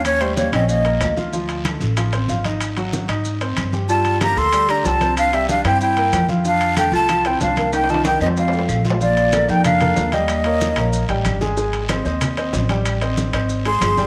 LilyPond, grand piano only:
\new Staff \with { instrumentName = "Grand piano" } { \time 4/4 \key f \major \tempo 4 = 187 <des' des''>8 <g g'>4 <des' des''>4 <bes bes'>4 <f' f''>8 | <f f'>4 <a a'>4 <f f'>8 <c' c''>8 <f' f''>8 <ees' ees''>8~ | <ees' ees''>8 <ges ges'>4 <ees' ees''>4 <c' c''>4 <g' g''>8 | <g g'>4 <bes bes'>4 <g g'>8 <d' d''>8 <g' g''>8 <c' c''>8~ |
<c' c''>8 <g g'>4 <c' c''>4 <bes bes'>4 <f' f''>8 | <f f'>4 <a a'>4 <f f'>8 <c' c''>8 <f' f''>8 <bes bes'>8~ | <bes bes'>8 <ees ees'>4 <c' c''>4 <a a'>4 <f' f''>8 | \key bes \major <f f' f''>4 <a a' bes'>8 <bes a' bes'>4 <bes a' bes'>4 <g g' g''>8~ |
<g g' g''>8 <bes bes' des''>4 <bes bes' des''>4 <g g' g''>4 <aes aes' aes''>8 | <aes aes' aes''>4 <c' c'' ees''>8 <c' c'' ees''>4 <c' c'' ees''>4 <g g' g''>8~ | <g g' g''>8 <c' c'' ees''>4 <c' c'' ees''>4 <aes aes' aes''>4 <g g' g''>8 | }